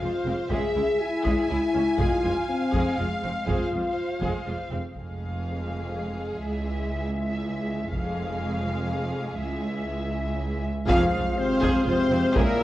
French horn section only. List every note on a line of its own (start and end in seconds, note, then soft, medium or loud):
0.02 0.50 F4 medium
0.51 1.00 G#4 medium
1.01 1.49 E4 medium
1.50 1.98 E4 medium
1.99 2.48 F4 medium
2.49 2.97 C4 medium
2.98 3.47 G#3 medium
3.48 4.71 F4 medium
4.96 7.89 G#3 soft
4.96 6.41 F4 soft
6.45 7.90 E4 soft
7.92 10.60 G#3 soft
7.92 9.38 F4 soft
9.39 10.61 E4 soft
10.88 11.34 F4 medium
11.38 11.85 C4 medium
11.86 12.35 C4 loud
12.35 12.63 A#3 loud